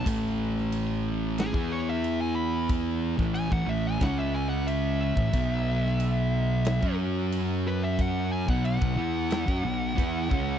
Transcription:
<<
  \new Staff \with { instrumentName = "Lead electric guitar" } { \time 4/4 \key b \mixolydian \tempo 4 = 91 r2 gis'8 cis''16 e''8 gis''16 b''8 | r4 gis''16 fis''16 e''16 gis''16 fis''16 e''16 gis''16 fis''16 e''8 e''8~ | e''2~ e''8 r4 b'16 e''16 | fis''8 gis''16 fis''16 fis''2. | }
  \new Staff \with { instrumentName = "Distorted electric guitar" } { \clef bass \time 4/4 \key b \mixolydian <a, e a>2~ <a, e a>16 <e b e'>4.~ <e b e'>16~ | <e b e'>8. <a, e a>8 <a, e>16 <a, e a>8 <cis gis cis'>4.~ <cis gis cis'>16 <a, e>16 | <b, fis b>2~ <b, fis b>16 <fis cis' fis'>4.~ <fis cis' fis'>16~ | <fis cis' fis'>8. <b, fis b>8 <b, fis>16 <e b e'>8. <fis cis'>16 <b, fis b>8 <e b e'>8 <cis gis cis'>8 | }
  \new Staff \with { instrumentName = "Distorted electric guitar" } { \clef bass \time 4/4 \key b \mixolydian <a, e a>2~ <a, e a>16 <e b e'>4.~ <e b e'>16~ | <e b e'>8. <a, e a>8 <a, e>16 <a, e a>8 <cis gis cis'>4.~ <cis gis cis'>16 <a, e>16 | <b, fis b>2~ <b, fis b>16 <fis cis' fis'>4.~ <fis cis' fis'>16~ | <fis cis' fis'>8. <b, fis b>8 <b, fis>16 <e b e'>8. <fis cis'>16 <b, fis b>8 <e b e'>8 <cis gis cis'>8 | }
  \new Staff \with { instrumentName = "Fingered electric bass" } { \clef bass \time 4/4 \key b \mixolydian a,,2~ a,,16 e,4.~ e,16~ | e,8. a,,8 a,,16 a,,8 cis,4.~ cis,16 a,,16 | b,,2~ b,,16 fis,4.~ fis,16~ | fis,8. b,,8 b,,16 e,8. fis,16 b,,8 e,8 cis,8 | }
  \new DrumStaff \with { instrumentName = "Drums" } \drummode { \time 4/4 <cymc bd>8. sn16 cymc4 <cymc sn>16 bd8. cymc4 | <cymc bd>8. <bd sn>16 cymc16 bd8. <cymc bd sn>4 cymc8. bd16 | <cymc bd>8. sn16 cymc4 <cymc sn>16 bd8. cymc4 | <cymc bd>8. bd16 cymc16 bd8. <cymc sn>16 bd8. <cymc bd>8 bd8 | }
>>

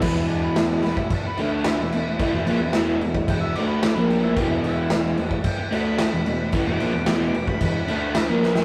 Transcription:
<<
  \new Staff \with { instrumentName = "Lead electric guitar" } { \time 4/4 \key e \mixolydian \tempo 4 = 111 b'16 e'16 d'16 b'16 e'16 d'16 b'16 e'16 d'16 b'16 e'16 d'16 e'4~ | e'4 r4 g''16 e''16 d''16 b'16 d''16 b'16 g'16 e'16 | g'16 e'16 e'8 r4 g''8 b''4. | r16 d'''4 d'''8 b''16 b''2 | }
  \new Staff \with { instrumentName = "Transistor combo organ" } { \time 4/4 \key e \mixolydian <b e' gis'>8 <b e' gis'>8 <b e' fis'>8 <b e' b'>8 <b e' gis'>8 <b e' gis'>8 <b e' gis'>8 <b e' gis'>8 | <b e' fis'>8 <b e' gis'>8 <b e' gis'>8 <b e' gis'>8 <b e' gis'>8 <b e' fis'>8 <b e' gis'>8 <b e' gis'>8 | <b e' b'>8 <b e' gis'>8 <b e' gis'>8 <b e' gis'>8 <b e' gis'>8 <b e' fis'>8 <b e' fis'>8 <b e' gis'>8 | <b e' gis'>8 <b e' gis'>8 <b e' fis'>8 <b e' gis'>8 <b e' gis'>8 <b e' gis'>8 <b e' b'>8 <b e' b'>8 | }
  \new Staff \with { instrumentName = "Overdriven electric guitar" } { \clef bass \time 4/4 \key e \mixolydian <e, b, e>4. <e, b,>8 r8 <d a d'>8. <e, b,>16 <e, b,>8 | <a, e>16 <e, b,>16 <ais, f>16 <e, b,>16 <e, b, e>8 <e, b,>8 <e, b,>8 <d a d'>8. <ais, f ais>8. | <e, b, e>4. <e, b,>8 r8 <d a d'>8. <e, b,>16 <e, b,>8 | <a, e>16 <e, b,>16 <ais, f>16 <e, b,>16 <e, b, e>8 <e, b,>8 <e, b,>8 <d a d'>8. <ais, f ais>8. | }
  \new Staff \with { instrumentName = "Picked electric bass" } { \clef bass \time 4/4 \key e \mixolydian e,,4. e,,8 r8 d,8. e,,16 e,,8 | a,,16 e,,16 ais,,16 e,,16 e,,8 e,,8 e,,8 d,8. ais,,8. | e,,4. e,,8 r8 d,8. e,,16 e,,8 | a,,16 e,,16 ais,,16 e,,16 e,,8 e,,8 e,,8 d,8. ais,,8. | }
  \new DrumStaff \with { instrumentName = "Drums" } \drummode { \time 4/4 <cymc bd>8 cymc8 <cymc sn>8 cymc16 bd16 <cymc bd>8 cymc8 <cymc sn>8 cymc8 | <cymc bd>8 cymc8 <cymc sn>8 cymc16 bd16 <cymc bd>8 cymc8 <cymc sn>8 cymc8 | <cymc bd>8 cymc8 <cymc sn>8 cymc16 bd16 <cymc bd>8 cymc8 <cymc sn>8 cymc8 | <cymc bd>8 cymc8 <cymc sn>8 cymc16 bd16 <cymc bd>8 cymc8 <cymc sn>8 sn16 sn16 | }
>>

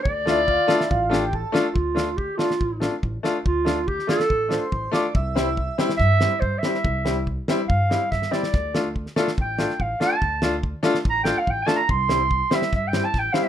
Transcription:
<<
  \new Staff \with { instrumentName = "Clarinet" } { \time 4/4 \key d \minor \tempo 4 = 142 d''2. r4 | f'4 g'8 f'4. r4 | f'4 g'8 a'4. r4 | r2 e''4 c''8 e''8~ |
e''4 r4 f''4 e''8 d''8~ | d''4 r4 g''4 f''8 a''8~ | a''4 r4 \tuplet 3/2 { bes''8 g''8 f''8 g''8 a''8 bes''8 } | c'''4. e''8 \tuplet 3/2 { e''8 g''8 a''8 g''8 f''8 e''8 } | }
  \new Staff \with { instrumentName = "Accordion" } { \time 4/4 \key d \minor r8 e'8 f'8 e'8 f'8 g'8 a'4 | r1 | r2 r8 c''4 d''8 | e''4.~ e''16 r2 r16 |
r1 | r1 | r1 | r1 | }
  \new Staff \with { instrumentName = "Upright piano" } { \time 4/4 \key d \minor r8 <a d' f'>16 r8. <a d' f'>16 r8. <a d' f'>16 r8. <a d' f'>16 r16 | r8 <a d' f'>16 r8. <a d' f'>16 r8. <a d' f'>16 r8. <a d' f'>16 r16 | r8 <a d' f'>16 r8. <a d' f'>16 r8. <a d' f'>16 r8. <a d' f'>16 r16 | r8 <g c' e'>16 r8. <g c' e'>16 r8. <g c' e'>16 r8. <g c' e'>16 r16 |
r8 <g c' e'>16 r8. <g c' e'>16 r8. <g c' e'>16 r8. <g c' e'>16 r16 | r8 <a d' f'>16 r8. <a d' f'>16 r8. <a d' f'>16 r8. <a d' f'>16 r16 | r8 <a d' f'>16 r8. <a d' f'>16 r8. <a d' f'>16 r8. <a d' f'>16 r16 | r8 <g c' e'>16 r8. <g c' e'>16 r8. <g c' e'>16 r8. <g c' e'>16 r16 | }
  \new Staff \with { instrumentName = "Upright bass" } { \clef bass \time 4/4 \key d \minor d,2 a,,2 | d,2 a,,4 a,,8 r8 | d,2 a,,4 a,,8 r8 | c,2 g,4 g,8 r8 |
c,2 g,4 g,8 r8 | d,2 a,,4 a,,8 r8 | d,2 a,,4 a,,8 r8 | c,2 g,4 a,,8 r8 | }
  \new DrumStaff \with { instrumentName = "Drums" } \drummode { \time 4/4 bd8 sn8 bd8 sn16 sn16 bd8 sn8 bd8 sn8 | bd8 sn8 bd8 sn16 sn16 bd8 sn8 bd8 sn8 | bd8 sn8 bd16 sn16 sn16 sn16 bd8 sn8 bd8 sn8 | bd8 sn8 bd8 sn16 sn16 <bd sn>8 sn8 bd8 sn16 sn16 |
bd8 sn8 bd8 sn8 bd8 sn8 <bd sn>16 sn16 sn16 sn16 | <bd sn>8 sn8 bd16 sn16 sn16 sn16 bd8 sn16 sn16 bd8 sn8 | bd8 sn8 bd8 sn16 sn16 bd8 sn8 bd8 sn8 | bd8 sn8 bd8 sn16 sn16 <bd sn>8 sn8 <bd sn>8 sn8 | }
>>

